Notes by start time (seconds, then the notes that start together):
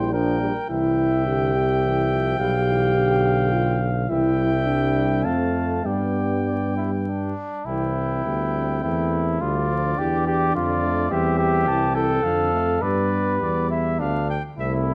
Already playing: A#1 G3 E4 C5 G5
0.13 F3 D4 A#4 G5
0.41 G3
0.69 C2 E3 E4 E5 G5
1.27 D3 G4
1.55 C3
1.84 E3
2.12 F3
2.39 B1 G3 G4 F5
2.68 E3
2.97 D3
3.53 F4
4.09 C2 E3 E4 E5 G5
4.38 G3
4.66 G3 D4
5.25 F2 A3 C4 F5 A5
5.85 G2 G3 B3 D5 G5
6.47 D5
6.77 E4
7.07 D4
7.65 C2 E3 C4 E4 G5
8.25 D2 G3 B3
8.55 C4
8.83 E2 A3 E4
9.41 D2 G3 D4 F4 D5
9.70 F3
9.99 E2 E3 G4
10.27 G4
10.55 F2 D3 F4 D5
10.83 A3
11.11 E2 G3 C4 G4 E5
11.39 G4
11.66 C2 E3 C4 A5
11.95 A4 G5
12.23 F2 D3 C4 F5
12.53 A3
12.81 G2 G3 B3 B4 D5
13.41 E2 D5
13.70 E4 E5
13.99 D2 D4 F5
14.30 G5
14.57 C2 A3 C4 E4 E5
14.88 E5